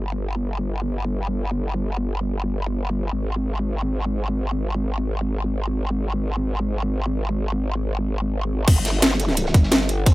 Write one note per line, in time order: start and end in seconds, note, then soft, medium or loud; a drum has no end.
0.00 3.11 G1 medium
3.13 8.66 G#1 medium
8.68 9.53 G1 loud
8.68 kick loud
8.68 closed hi-hat medium
8.68 crash loud
8.76 closed hi-hat soft
8.85 snare medium
8.85 closed hi-hat medium
9.02 snare loud
9.02 closed hi-hat medium
9.02 closed hi-hat loud
9.11 snare medium
9.19 closed hi-hat medium
9.28 snare soft
9.37 closed hi-hat medium
9.37 closed hi-hat loud
9.46 snare soft
9.54 10.14 G1 medium
9.54 kick loud
9.54 closed hi-hat medium
9.63 snare soft
9.71 snare loud
9.71 closed hi-hat loud
9.81 snare soft
9.89 closed hi-hat medium
10.06 kick loud
10.06 closed hi-hat loud
10.06 closed hi-hat medium